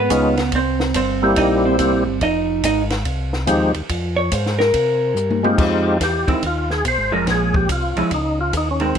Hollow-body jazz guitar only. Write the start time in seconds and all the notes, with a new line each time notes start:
0.00 B3 B4
0.55 C4 C5
0.96 C4 C5
1.38 D#4 D#5
1.65 C4 C5
2.23 D#4 D#5
2.65 D#4 D#5
4.16 C#5
4.32 C5
4.59 A#4
6.27 D#3 G#3 C4
7.12 F3 G#3 C#4
7.97 F3 G#3 C#4
8.80 D#3 G#3 C4